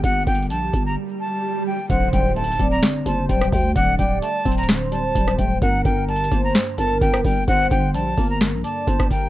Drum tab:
HH |x-----------x---x---x---x-----------x-----------------------------------------------------------|x-----------x-----------x---x---x---x-----------x-----------x-----------x-----------o-----------|x-----------x-----------x-----------x--x--x--x--x-----------x-----------x-----------x-----------|x-----------x-----------x---x---x---x-----------x-----------x-----------x-----------o-----------|
SD |------------------------------------------------------------------------------------------------|------------------------------------------------o-----------------------------r-----------------|------------------------------------------------o-----------------------------r-----------------|------------------------------------------------o-----------------------------r-----------------|
BD |o-----------o-----------------------o-----------------------------------------------------------|o-----------o-----------------------o-----------------------------------o-----------o-----------|o-----------o-----------------------o-----------------------------------o-----------o-----------|o-----------o-----------------------o-----------------------------------o-----------o-----------|

HH |x-----------x-----------x-----------o-----------x-----------x-----------x-----------o-----------|
SD |------------------------------------------------o-----------------------------r-----------------|
BD |o-----------o-----------------------o-----------------------------------o-----o-----o-----------|